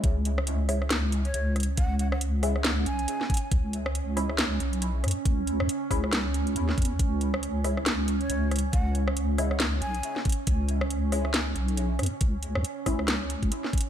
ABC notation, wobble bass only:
X:1
M:4/4
L:1/16
Q:"Swing 16ths" 1/4=138
K:C#m
V:1 name="Wobble bass" clef=bass
C,,12 C,,4 | C,,8- C,,2 B,,,2 z4 | C,,8- C,,2 B,,,4 F,, z | C,,3 D,, z2 C,,6 D,,2 E,,2 |
C,,12 C,,4 | C,,8- C,,2 B,,,2 z4 | C,,8- C,,2 B,,,4 F,, z | C,,3 D,, z2 C,,6 z4 |]